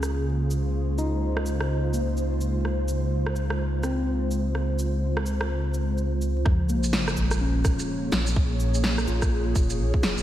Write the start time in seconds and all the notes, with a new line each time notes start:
Already playing: C#2 C#3 G#3 A#3 C#4 F4 G#4 C5
0.03 cross-stick, cabasa
0.51 cabasa
0.98 D#4, cabasa
1.37 cross-stick
1.46 cabasa
1.61 cross-stick
1.94 A#3, cabasa
2.17 cabasa
2.41 cabasa
2.65 cross-stick
2.88 cabasa
3.26 cross-stick
3.36 cabasa
3.50 cross-stick
3.83 C4, cross-stick, cabasa
4.31 cabasa
4.55 cross-stick
4.79 cabasa
5.17 cross-stick
5.26 cabasa
5.41 cross-stick
5.74 cabasa
5.98 cabasa
6.22 cabasa
6.45 A#2 F3, kick, cross-stick, sub drop
6.69 A#3, cabasa
6.84 A#3, shaker
6.93 C#5, snare
7.08 cross-stick, shaker
7.17 A#1, cabasa
7.31 G#4, cross-stick, shaker
7.41 C#4
7.65 A#1, kick, cross-stick, cabasa, shaker
7.79 shaker
8.12 A#1, snare, cabasa
8.27 shaker
8.36 kick
8.60 cabasa
8.74 shaker
8.84 snare
8.98 cross-stick, shaker
9.08 A#1 F4, cabasa
9.22 kick, cross-stick, shaker
9.56 F1, kick, cabasa, shaker
9.70 shaker
9.79 A#1
9.94 kick
10.03 F1, snare, cabasa
10.17 F1, shaker